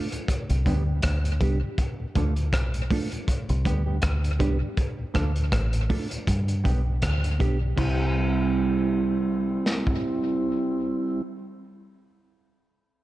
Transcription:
0.12 0.19 D2 medium
0.12 0.19 A2 medium
0.12 closed hi-hat medium
0.28 kick loud
0.28 closed hi-hat loud
0.49 0.65 C2 medium
0.49 0.56 G2 medium
0.49 0.56 D3 medium
0.49 closed hi-hat medium
0.65 1.02 D2 medium
0.65 0.74 G3 medium
0.65 0.82 G3 medium
0.65 0.74 B3 medium
0.65 0.83 B3 loud
0.65 0.75 D4 medium
0.65 0.83 D4 medium
0.65 0.83 G4 loud
0.65 kick loud
0.65 closed hi-hat medium
0.86 0.93 G2 medium
0.86 0.93 D3 medium
1.02 1.39 D2 medium
1.02 kick loud
1.02 cross-stick loud
1.02 closed hi-hat loud
1.24 1.31 G2 medium
1.24 1.31 D3 medium
1.24 closed hi-hat medium
1.40 1.61 C2 medium
1.40 1.49 G3 medium
1.40 1.57 G3 medium
1.40 1.49 B3 medium
1.40 1.57 B3 medium
1.40 1.49 D4 medium
1.40 1.58 D4 medium
1.40 1.58 G4 medium
1.40 kick medium
1.40 closed hi-hat medium
1.62 1.69 G2 medium
1.62 1.69 D3 medium
1.78 kick loud
1.78 closed hi-hat medium
2.00 2.06 D2 medium
2.00 2.06 A2 medium
2.15 2.53 D2 medium
2.15 2.25 F3 medium
2.15 2.25 A3 medium
2.15 2.32 A3 medium
2.15 2.25 D4 medium
2.15 2.32 D4 medium
2.15 2.33 F4 loud
2.15 2.33 A4 loud
2.15 kick medium
2.15 closed hi-hat medium
2.36 2.44 D2 medium
2.36 2.44 A2 medium
2.36 closed hi-hat soft
2.53 2.89 B1 loud
2.53 kick loud
2.53 cross-stick loud
2.53 closed hi-hat medium
2.74 2.81 D2 medium
2.74 2.81 A2 medium
2.74 closed hi-hat medium
2.91 2.99 F3 medium
2.91 3.07 A3 medium
2.91 3.00 A3 medium
2.91 3.00 D4 medium
2.91 3.07 D4 medium
2.91 3.07 F4 medium
2.91 3.08 A4 medium
2.91 kick loud
2.91 open hi-hat medium
3.11 3.18 D2 medium
3.11 3.18 A2 medium
3.11 closed hi-hat medium
3.28 kick loud
3.28 closed hi-hat loud
3.48 3.65 C2 loud
3.48 3.56 G2 medium
3.48 3.56 D3 medium
3.48 closed hi-hat soft
3.64 4.01 D2 medium
3.64 3.74 G3 medium
3.64 3.81 G3 medium
3.64 3.74 B3 medium
3.64 3.82 B3 medium
3.64 3.74 D4 medium
3.64 3.82 D4 medium
3.64 3.82 G4 medium
3.64 kick loud
3.64 closed hi-hat medium
3.86 3.93 G2 medium
3.86 3.93 D3 medium
3.86 3.97 G3 medium
3.86 3.97 B3 medium
3.86 3.96 D4 medium
3.86 3.96 G4 medium
4.02 4.39 D2 medium
4.02 kick loud
4.02 cross-stick loud
4.02 closed hi-hat loud
4.24 4.31 G2 medium
4.24 4.31 D3 medium
4.24 closed hi-hat medium
4.39 4.61 C2 medium
4.39 4.56 G3 medium
4.39 4.49 G3 medium
4.39 4.56 B3 medium
4.39 4.49 B3 medium
4.39 4.56 D4 loud
4.39 4.49 D4 medium
4.39 4.57 G4 loud
4.39 kick medium
4.39 closed hi-hat medium
4.62 4.68 G2 medium
4.62 4.68 D3 medium
4.77 kick loud
4.77 closed hi-hat medium
4.99 5.06 D2 medium
4.99 5.06 A2 medium
5.14 5.51 D2 medium
5.14 5.24 F3 medium
5.14 5.31 A3 medium
5.14 5.25 A3 medium
5.14 5.31 D4 medium
5.14 5.24 D4 medium
5.14 5.31 F4 medium
5.14 5.31 A4 medium
5.14 kick medium
5.14 cross-stick medium
5.14 closed hi-hat medium
5.36 5.44 D2 medium
5.36 5.44 A2 medium
5.36 closed hi-hat soft
5.52 5.88 A1 medium
5.52 kick loud
5.52 cross-stick loud
5.52 closed hi-hat medium
5.73 5.81 D2 medium
5.73 5.81 A2 medium
5.73 closed hi-hat medium
5.89 5.99 F3 medium
5.89 6.06 A3 medium
5.89 5.99 A3 medium
5.89 5.99 D4 medium
5.89 6.06 D4 medium
5.89 6.07 F4 medium
5.89 6.07 A4 medium
5.89 kick loud
5.89 open hi-hat medium
6.11 6.18 D2 medium
6.11 6.18 A2 medium
6.11 closed hi-hat medium
6.27 6.64 G2 loud
6.27 kick loud
6.27 closed hi-hat loud
6.48 6.55 G2 medium
6.48 6.55 D3 medium
6.48 closed hi-hat medium
6.64 7.01 B1 medium
6.64 6.81 G3 medium
6.64 6.74 G3 medium
6.64 6.74 B3 medium
6.64 6.81 B3 loud
6.64 6.74 D4 medium
6.64 6.81 D4 loud
6.64 6.82 G4 loud
6.64 kick medium
6.64 closed hi-hat medium
6.86 6.93 G2 medium
6.86 6.93 D3 medium
7.02 7.39 D2 medium
7.02 kick loud
7.02 cross-stick medium
7.02 closed hi-hat medium
7.24 7.31 G2 soft
7.24 7.31 D3 medium
7.24 closed hi-hat medium
7.39 7.76 B1 medium
7.39 7.48 G3 medium
7.39 7.56 G3 medium
7.39 7.49 B3 medium
7.39 7.56 B3 medium
7.39 7.49 D4 medium
7.39 7.57 D4 medium
7.39 7.57 G4 medium
7.39 kick loud
7.39 closed hi-hat medium
7.61 7.68 G2 medium
7.61 7.68 D3 medium
7.76 11.22 C2 medium
7.76 11.26 G3 medium
7.76 11.21 G3 medium
7.76 11.22 C4 medium
7.76 11.28 C4 medium
7.76 11.22 E4 medium
7.76 11.30 E4 medium
7.76 kick medium
7.76 crash medium
7.82 11.32 G4 medium
9.66 snare medium
9.87 kick medium

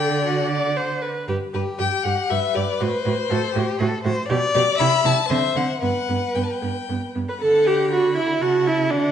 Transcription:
0.00 1.08 D3 medium
0.00 0.24 A4 medium
0.00 1.02 D5 medium
0.00 0.27 G5 loud
0.25 0.49 F#4 medium
0.25 1.03 F#5 medium
0.51 0.78 D5 medium
0.77 1.03 C5 medium
1.02 1.28 B4 medium
1.28 1.36 G2 medium
1.28 1.37 G4 medium
1.28 1.36 B4 medium
1.53 1.62 G2 medium
1.53 2.32 G4 medium
1.53 1.62 G4 medium
1.53 1.62 B4 medium
1.78 1.88 G2 medium
1.78 1.86 G4 medium
1.78 2.05 G5 loud
2.03 2.13 G2 medium
2.03 2.13 G4 medium
2.03 2.31 F#5 loud
2.29 2.39 G2 medium
2.29 2.37 G4 medium
2.29 3.32 B4 medium
2.29 2.56 E5 loud
2.54 2.64 G2 medium
2.54 2.62 G4 medium
2.54 2.83 D5 loud
2.80 2.89 A2 medium
2.80 2.88 F#4 medium
2.80 4.05 C5 loud
3.05 3.14 A2 medium
3.05 3.13 F#4 medium
3.30 3.39 A2 medium
3.30 3.38 F#4 medium
3.30 3.54 A4 medium
3.55 3.64 A2 medium
3.55 3.64 F#4 medium
3.55 3.81 G4 medium
3.79 3.88 A2 loud
3.79 3.89 F#4 medium
3.79 4.03 A4 medium
4.04 4.13 A2 medium
4.04 4.13 F#4 medium
4.04 4.28 C5 loud
4.29 4.38 B2 loud
4.29 4.38 G4 medium
4.29 4.78 D5 loud
4.55 4.63 B2 medium
4.55 4.63 G4 medium
4.55 4.82 D5 loud
4.78 4.88 C3 medium
4.78 4.88 E4 medium
4.78 5.28 E5 loud
4.78 5.07 B5 loud
5.05 5.13 C3 medium
5.05 5.13 E4 medium
5.05 5.32 A5 loud
5.29 5.38 D3 medium
5.29 5.38 C4 medium
5.29 5.80 C5 loud
5.29 5.58 E5 loud
5.55 5.64 D3 medium
5.55 5.63 C4 medium
5.55 5.81 F#5 loud
5.81 5.90 G2 medium
5.81 5.90 B3 medium
5.81 7.11 B4 medium
5.81 6.36 F#5 loud
6.08 6.17 G2 medium
6.08 6.16 B3 medium
6.35 6.44 G2 medium
6.35 6.43 B3 medium
6.35 6.45 G5 medium
6.44 6.53 A5 medium
6.51 7.15 G5 medium
6.62 6.71 G2 medium
6.62 6.70 B3 medium
6.89 6.97 G2 medium
6.89 6.97 B3 medium
7.15 7.24 G2 medium
7.15 7.20 B3 medium
7.29 7.33 B4 medium
7.29 7.43 B5 medium
7.41 8.39 D3 medium
7.41 7.68 A4 medium
7.41 7.88 F#5 medium
7.41 7.68 A5 medium
7.66 7.91 G4 medium
7.66 7.94 G5 medium
7.91 8.16 F#4 medium
7.91 8.17 F#5 medium
7.91 8.44 B5 medium
8.17 8.43 E4 medium
8.17 8.27 E5 medium
8.42 8.93 C#3 medium
8.42 8.69 F#4 medium
8.42 8.68 F#5 medium
8.42 8.93 A5 medium
8.66 8.92 E4 medium
8.66 8.93 E5 medium
8.91 9.12 D3 medium
8.91 9.12 D4 loud
8.91 9.12 D5 medium
8.91 9.12 F#5 medium

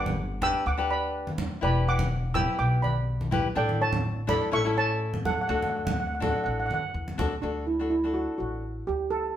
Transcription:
0.00 0.52 G1 loud
0.00 0.13 D4 medium
0.00 0.13 G4 medium
0.00 0.14 B4 medium
0.00 0.40 F#5 medium
0.00 0.44 D6 medium
0.06 high conga medium
0.06 low conga medium
0.42 0.63 D4 medium
0.42 0.64 G4 medium
0.42 0.64 B4 loud
0.42 0.65 G5 medium
0.42 0.65 E6 loud
0.42 low conga medium
0.66 1.48 D2 medium
0.66 0.89 F#5 medium
0.66 0.89 D6 medium
0.78 1.29 D4 medium
0.78 1.29 G4 medium
0.78 1.29 B4 medium
0.91 1.36 D5 medium
0.91 1.35 B5 medium
1.27 high conga medium
1.38 low conga medium
1.61 2.45 E1 loud
1.61 2.06 E4 medium
1.61 2.06 G4 medium
1.61 2.06 B4 medium
1.61 1.74 D5 medium
1.61 1.75 B5 medium
1.88 2.33 F#5 medium
1.88 2.37 D6 loud
1.99 high conga medium
1.99 low conga medium
2.34 2.93 E4 medium
2.34 2.93 G4 medium
2.34 2.94 B4 medium
2.34 2.58 G5 medium
2.34 2.57 E6 loud
2.34 low conga medium
2.59 3.41 B1 loud
2.59 2.81 G5 medium
2.59 2.84 D6 medium
2.82 3.28 D5 medium
2.82 3.28 B5 medium
2.82 high conga medium
3.21 high conga medium
3.31 3.46 E4 medium
3.31 3.47 G4 medium
3.31 3.47 B4 medium
3.31 low conga medium
3.55 4.38 A1 loud
3.55 3.99 D4 medium
3.55 4.00 E4 medium
3.55 4.00 A4 medium
3.55 3.68 D5 medium
3.55 3.67 G5 medium
3.69 high conga medium
3.81 4.26 C#5 medium
3.81 4.26 A5 medium
3.93 high conga medium
3.93 low conga medium
4.27 4.50 D4 medium
4.27 4.50 E4 medium
4.27 4.50 A4 loud
4.27 4.51 D5 medium
4.27 4.54 B5 medium
4.27 low conga medium
4.51 5.35 A1 medium
4.51 4.62 C#4 medium
4.51 4.62 E4 medium
4.51 4.63 A4 loud
4.51 4.75 E5 medium
4.51 4.78 C#6 loud
4.64 5.15 C#4 medium
4.64 5.16 E4 medium
4.64 5.16 A4 loud
4.77 5.22 C#5 medium
4.77 5.22 A5 loud
5.14 high conga medium
5.25 5.33 A4 medium
5.25 5.32 F#5 medium
5.25 low conga medium
5.34 5.40 F#5 medium
5.41 5.47 F#5 medium
5.48 6.31 D2 loud
5.48 5.93 D4 medium
5.48 5.93 F#4 medium
5.48 5.93 A4 medium
5.48 5.54 F#5 medium
5.55 5.62 F#5 medium
5.62 5.69 F#5 medium
5.62 high conga medium
5.70 5.76 F#5 medium
5.77 5.84 F#5 medium
5.85 5.91 F#5 medium
5.85 high conga medium
5.85 low conga medium
5.92 5.99 F#5 medium
6.00 6.06 F#5 medium
6.07 6.14 F#5 soft
6.15 6.21 F#5 medium
6.20 6.80 D4 medium
6.20 6.80 F#4 medium
6.20 6.81 A4 medium
6.20 6.28 F#5 soft
6.20 low conga medium
6.29 6.36 F#5 medium
6.37 6.43 F#5 soft
6.44 6.66 A1 medium
6.44 6.50 F#5 medium
6.51 6.58 F#5 soft
6.60 6.65 F#5 medium
6.66 6.92 F#2 medium
6.66 6.73 F#5 medium
6.71 6.81 F#5 medium
6.71 high conga medium
6.94 7.16 E2 medium
7.08 high conga medium
7.18 7.41 D2 medium
7.18 7.33 D4 medium
7.18 7.34 F#4 medium
7.18 7.34 A4 medium
7.18 low conga medium
7.42 8.25 D2 medium
7.42 7.65 D4 medium
7.42 7.64 D4 medium
7.42 7.65 F#4 soft
7.42 7.65 A4 medium
7.67 7.89 E4 medium
7.79 7.94 D4 medium
7.79 7.94 F#4 medium
7.79 7.95 A4 medium
7.90 8.02 E4 medium
8.04 8.62 D4 medium
8.04 8.62 F#4 soft
8.04 8.63 A4 medium
8.14 8.37 F#4 medium
8.38 8.81 A1 medium
8.38 8.84 F#4 medium
8.87 9.30 D2 medium
8.87 8.99 G4 medium
9.11 9.37 A4 medium

